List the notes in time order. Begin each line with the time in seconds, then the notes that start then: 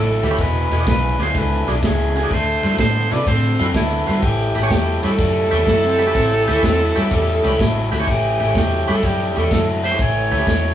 Already playing: A1 A2 F#3 A4
0.23 D2 A2 F#3 G4 B4, snare, ride
0.31 C#4 G4 B4
0.38 E1 E2 B2 B4, kick, snare, ride
0.70 E1 E2 B2 F#4 G#4, snare, ride
0.80 D4 F#4 G#4
0.86 B1 E2 C#3 B4, kick, snare, ride
1.19 D2 E2 C#3 D4 F#4 G#4 C5, snare, ride
1.34 C#2 E2 D3 B4, kick, snare, ride
1.67 B1 E2 D3 D4 F#4 G#4, snare, ride
1.82 C#2 E2 C#3 G#4, kick, snare, ride
2.15 E2 C#3 F#4 G#4, snare, ride
2.23 D4 F#4 G#4
2.30 D2 D3 A3 C5, kick, snare, ride
2.63 G2 D3 A3 F#4 C5, snare, ride
2.72 E4 F#4 C5
2.78 A2 D3 B3 C5, kick, snare, ride
3.11 C3 D3 B3 E4 F#4 B4 D5, snare, ride
3.26 A2 D3 C4 C5, kick, snare, ride
3.59 F#2 D3 C4 E4 F#4 C5, snare, ride
3.74 D2 D3 B3 E4, kick, snare, ride
4.06 G2 D3 B3 F#4 C5, snare, ride
4.15 E4 F#4 C5
4.22 A1 A2 E3 G4, kick, snare, ride
4.55 A1 A2 E3 G4 B4, snare, ride
4.63 C#4 G4 C#5
4.70 E2 A2 F#3 G4, kick, snare, ride
5.03 G2 A2 F#3 C#4 G4 A4 B4, snare, ride
5.18 F#2 A2 G3, kick, snare, ride
5.51 E2 A2 G3 C#4 G4 B4, snare, ride
5.67 F#2 A2 F#3 E4, kick, snare, ride
5.84 C4
5.99 A2 F#3 G4 B4, snare, ride
6.07 C#4 G4 B4
6.15 A1 A2 E3 C4, kick, snare, ride
6.33 G4
6.48 D2 A2 E3 E4 G4 B4, snare, ride
6.55 C#4 G4 B4
6.63 E2 A2 F#3 C4, kick, snare, ride
6.80 E4
6.96 G2 A2 F#3 C#4 G4 A4 B4, snare, ride
7.11 E2 A2 G3 G4, kick, snare, ride
7.30 A4
7.44 C#2 A2 G3 C#4 G4 B4, snare, ride
7.59 A1 A2 F#3 E4, kick, snare, ride
7.92 D2 A2 F#3 E4 G4 B4, snare, ride
8.00 C#4 G4 C#5
8.07 A1 A2 E3 G4, kick, snare, ride
8.40 A1 A2 E3 G4 B4, snare, ride
8.48 C#4 G4 C#5
8.54 E2 A2 F#3 G4, kick, snare, ride
8.87 G2 A2 F#3 C#4 G4 A4 B4, snare, ride
9.03 F#2 A2 G3 G4, kick, snare, ride
9.35 E2 A2 G3 C#4 G4 A4 B4, snare, ride
9.51 F#2 A2 F#3 A4, kick, snare, ride
9.83 A2 F#3 G4 B4 C5, snare, ride
9.91 C#4 G4 B4
9.98 A1 A2 E3 C#5, kick, snare, ride
10.31 D2 A2 E3 G4 B4, snare, ride
10.39 C#4 G4 B4
10.47 E2 A2 F#3, kick, snare, ride